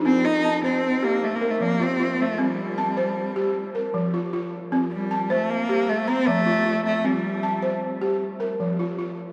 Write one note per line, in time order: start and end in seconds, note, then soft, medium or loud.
0.00 0.14 D4 medium
0.05 0.26 C4 medium
0.05 0.44 C4 medium
0.25 0.64 D#4 medium
0.44 1.03 A5 medium
0.64 1.06 C4 medium
0.64 1.03 C5 medium
1.03 1.25 A#3 medium
1.03 1.22 G4 medium
1.24 1.37 A3 medium
1.35 1.52 A#3 medium
1.41 2.00 A#4 medium
1.50 1.62 A3 medium
1.61 2.00 F3 medium
1.61 1.84 A#3 medium
1.80 2.23 C4 medium
1.80 1.98 F4 medium
2.00 2.39 F4 medium
2.21 2.41 A3 medium
2.38 3.95 G3 medium
2.38 2.78 C4 medium
2.78 3.36 A5 medium
2.97 3.36 C5 medium
3.36 3.55 G4 medium
3.75 4.33 A#4 medium
3.94 4.33 F3 medium
4.14 4.32 F4 medium
4.33 4.72 F4 medium
4.72 5.11 C4 medium
4.92 5.33 G3 medium
5.11 5.69 A5 medium
5.30 5.52 A3 medium
5.30 5.69 C5 medium
5.50 5.91 A#3 medium
5.69 5.89 G4 medium
5.89 6.10 A3 medium
6.08 6.29 C4 medium
6.08 6.66 A#5 medium
6.27 6.66 F3 medium
6.27 6.85 A3 medium
6.46 6.65 F4 medium
6.66 7.05 F4 medium
6.85 7.07 A3 medium
7.04 7.83 G3 medium
7.04 7.43 C4 medium
7.43 8.02 A5 medium
7.62 8.01 C5 medium
8.02 8.21 G4 medium
8.40 8.98 A#4 medium
8.60 8.99 F3 medium
8.79 8.97 F4 medium
8.98 9.33 F4 medium